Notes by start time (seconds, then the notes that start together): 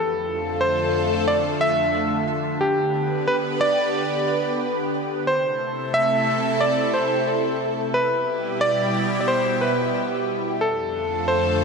Already playing: F2 D3 A3 F4 A4
0.61 C5
1.28 D5
1.61 E5
2.61 B3 G4 B4
3.28 B4
3.61 D5
5.27 C3 A3 E4 A4 C5
5.94 E5
6.61 D5
6.94 C5
7.94 B2 G3 E4 G4 B4
8.61 D5
9.21 D5
9.28 C5
9.61 B4
10.61 F2 D3 A3 F4 A4
11.28 C5